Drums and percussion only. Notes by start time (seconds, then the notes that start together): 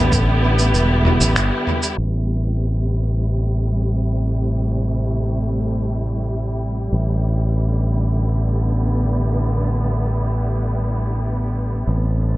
0.12 kick, cabasa
0.59 cabasa
0.74 cabasa
1.05 mid tom
1.21 cabasa
1.36 finger snap, cabasa
1.67 mid tom
1.82 cabasa
6.15 cabasa
6.77 cabasa
9.25 cabasa
10.48 cabasa
11.71 cabasa
12.34 cabasa